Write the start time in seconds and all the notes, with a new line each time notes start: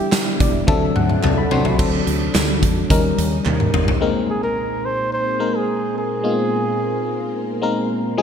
Already playing: D3 E3 G3 B3 D4 E4 G4
0.12 snare, clap, closed hi-hat
0.40 E1 D5, kick, closed hi-hat
0.67 D2 C3 F#3 C4 D4 A4 E5, kick, high tom
0.96 D2 F#5, mid tom
1.10 mid tom
1.23 C2 A5, clap, mid tom
1.38 B5
1.51 C2 F#3 C4 D4 F#4 C6, floor tom
1.65 floor tom
1.78 D2 C3 F#3 C4 D4 A4, kick, crash
2.07 D2, closed hi-hat
2.35 D2, snare, clap, closed hi-hat
2.63 E2, kick, closed hi-hat
2.90 D#2 C#3 G3 C#4 D#4 A#4, kick, closed hi-hat
3.18 D#2, closed hi-hat
3.46 D#2, clap, high tom
3.60 mid tom
3.74 G1, mid tom
3.88 floor tom
4.01 A#2 G#3 A#3 C4 D#4 A#4
4.30 G#4
4.43 A#4
4.85 C5
5.13 C5
5.39 G#3 A#3 C4 D#4 A#4
5.56 G#4
5.98 G#4
6.23 G#3 A#3 B3 D#4 F4
6.30 C4
7.62 G#3 A#3 C4 D#4 A#4
8.18 D#3 F3 G#3 C4 D#4 F4 G#4